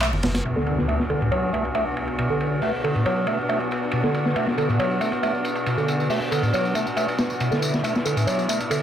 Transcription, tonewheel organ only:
0.01 0.11 A3 medium
0.45 0.55 B2 medium
0.56 0.87 D3 medium
0.88 0.98 A3 medium
1.10 1.21 D3 medium
1.21 1.31 A2 loud
1.32 1.52 F#3 medium
1.53 1.64 A3 medium
1.75 1.85 A3 medium
2.19 2.29 B2 medium
2.30 2.61 D3 medium
2.62 2.72 A3 medium
2.84 2.95 D3 medium
2.96 3.05 A2 loud
3.06 3.27 F#3 medium
3.28 3.38 A3 medium
3.49 3.59 A3 medium
3.93 4.03 B2 medium
4.04 4.35 D3 medium
4.36 4.46 A3 medium
4.58 4.69 D3 medium
4.69 4.79 A2 loud
4.79 5.00 F#3 medium
5.01 5.12 A3 medium
5.23 5.33 A3 medium
5.66 5.77 B2 medium
5.78 6.09 D3 medium
6.10 6.20 A3 medium
6.31 6.42 D3 medium
6.43 6.53 A2 loud
6.53 6.74 F#3 medium
6.75 6.86 A3 medium
6.97 7.07 A3 medium
7.40 7.51 B2 medium
7.51 7.83 D3 medium
7.84 7.94 A3 medium
8.05 8.16 D3 medium
8.17 8.27 A2 medium
8.27 8.48 F#3 medium
8.49 8.60 A3 medium
8.71 8.82 D3 medium

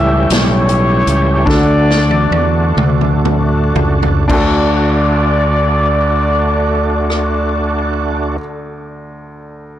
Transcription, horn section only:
0.00 0.31 G4 medium
0.00 0.31 C#5 medium
0.00 0.31 E5 medium
0.32 1.44 E4 medium
0.32 1.44 G4 medium
0.32 1.48 C#5 medium
1.48 3.22 F#4 medium
1.48 3.21 A4 medium
1.48 3.25 D5 medium
4.31 8.38 D5 medium

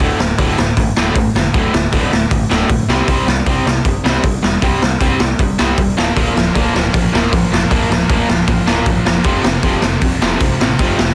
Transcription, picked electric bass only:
0.00 0.12 D1 loud
0.20 0.32 D1 medium
0.39 0.51 D1 medium
0.59 0.71 D1 medium
0.77 0.90 A1 loud
0.97 1.09 D1 medium
1.15 1.28 A1 medium
1.35 1.48 F1 medium
1.54 1.67 D1 medium
1.73 1.86 D1 medium
1.93 2.05 D1 medium
2.13 2.25 D1 medium
2.31 2.44 A1 medium
2.50 2.63 D1 loud
2.70 2.82 A#1 medium
2.88 3.01 C2 medium
3.08 3.20 C2 loud
3.27 3.40 C2 medium
3.46 3.59 C2 medium
3.66 3.79 C2 loud
3.85 3.98 G1 medium
4.05 4.17 C2 medium
4.24 4.36 G1 medium
4.43 4.56 E1 medium
4.62 4.75 C2 loud
4.82 4.95 C2 medium
5.01 5.13 C2 medium
5.21 5.33 C2 medium
5.39 5.52 G1 medium
5.60 5.72 C2 medium
5.78 5.90 E1 medium
5.98 6.10 D1 medium
6.17 6.29 D1 medium
6.37 6.49 D1 medium
6.56 6.68 D1 medium
6.75 6.88 D1 medium
6.94 7.06 A1 medium
7.13 7.26 D1 medium
7.32 7.45 A1 medium
7.51 7.64 F1 medium
7.71 7.83 D1 loud
7.90 8.03 D1 medium
8.09 8.22 D1 medium
8.29 8.41 D1 medium
8.47 8.60 A1 loud
8.67 8.79 D1 medium
8.86 8.99 A1 medium
9.06 9.18 F1 medium
9.25 9.37 F1 loud
9.45 9.57 F1 medium
9.63 9.76 F1 medium
9.83 9.96 F1 medium
10.02 10.14 C2 loud
10.22 10.35 F1 medium
10.41 10.53 C2 medium
10.60 10.73 A1 medium
10.79 10.92 F1 loud
10.99 11.12 F1 medium

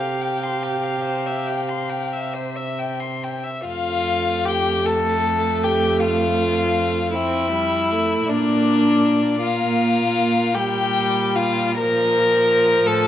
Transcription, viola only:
0.00 2.35 G4 soft
3.67 7.16 A3 medium
7.14 7.52 C4 medium
7.53 7.93 G3 medium
7.92 8.31 A3 medium
8.30 9.41 A#3 medium
9.43 10.57 A#3 medium
10.55 11.80 G3 medium
11.78 13.07 F3 medium

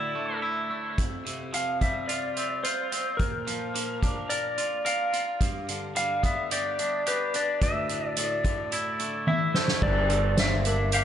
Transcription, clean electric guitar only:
0.00 0.15 D2 soft
0.00 0.71 A2 soft
0.00 0.98 D3 soft
0.00 0.41 E4 soft
0.15 0.69 A3 soft
0.42 0.98 E4 soft
0.70 0.98 A3 soft
0.98 2.37 F2 soft
1.25 2.64 C3 soft
1.53 2.92 F3 soft
1.81 3.20 G3 soft
2.09 2.63 F4 soft
2.37 2.91 C4 soft
2.65 3.20 F4 soft
2.92 3.20 C4 soft
3.20 4.58 A#2 soft
3.47 4.85 F3 soft
3.74 5.13 A#3 soft
4.03 6.22 D4 soft
4.30 4.84 A#4 soft
4.58 5.11 F4 soft
4.85 5.41 A#4 soft
5.13 5.41 F4 soft
5.41 6.79 G2 soft
5.69 7.07 D3 soft
5.95 7.34 G3 soft
6.23 7.61 B3 soft
6.52 7.05 G4 soft
6.79 7.34 D4 soft
7.07 7.62 G4 soft
7.34 8.76 D4 soft
7.62 9.00 D2 soft
7.90 8.16 A2 soft
8.18 9.55 A2 soft
8.45 9.82 D3 soft
8.73 9.26 E4 soft
9.00 9.54 A3 soft
9.28 9.82 E4 soft
9.55 9.83 A3 soft
9.83 11.04 G2 medium
10.10 11.04 D3 soft
10.38 11.04 A#3 soft
10.66 11.04 D4 soft
10.93 11.04 G4 medium

